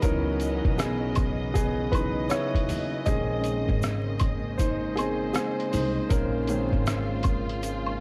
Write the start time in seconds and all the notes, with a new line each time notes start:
Already playing: C#3 E3 F#3 B3 D#4 G#4 A#4 B4 D#5
0.02 C#2 E3 F#3 B3 C#4 D#4 A#4, kick, closed hi-hat, shaker
0.40 closed hi-hat, shaker
0.65 B1, kick
0.78 B3 G#4, cross-stick, closed hi-hat, shaker
1.15 kick, closed hi-hat, high woodblock, shaker
1.54 B3 G#4, kick, closed hi-hat, shaker
1.92 E3 F#3 B3 D#4 B4, kick, closed hi-hat, high woodblock, shaker
2.30 E4 C#5, cross-stick, closed hi-hat, shaker
2.55 kick, closed hi-hat
2.69 D#2, open hi-hat, shaker
3.06 A#1 D#3 G#3 A#3 C4 C#4 G#4 C5 D#5, kick, closed hi-hat, shaker
3.44 closed hi-hat, shaker
3.69 G#1, kick
3.82 cross-stick, closed hi-hat, shaker
4.19 kick, closed hi-hat, high woodblock, shaker
4.58 D#4 C5, kick, closed hi-hat, shaker
4.96 C4 G#4, closed hi-hat, high woodblock, shaker
5.34 C4 G#4, cross-stick, closed hi-hat, shaker
5.60 closed hi-hat
5.72 C2 D#4 C5, open hi-hat, shaker
6.09 A#1 C#4 F4 A#4, kick, closed hi-hat, shaker
6.47 D#3 G#3 C4 C#4, closed hi-hat, shaker
6.73 G#1, kick
6.87 cross-stick, closed hi-hat, shaker
7.23 kick, closed hi-hat, high woodblock, shaker
7.49 closed hi-hat
7.63 closed hi-hat, shaker
7.86 high woodblock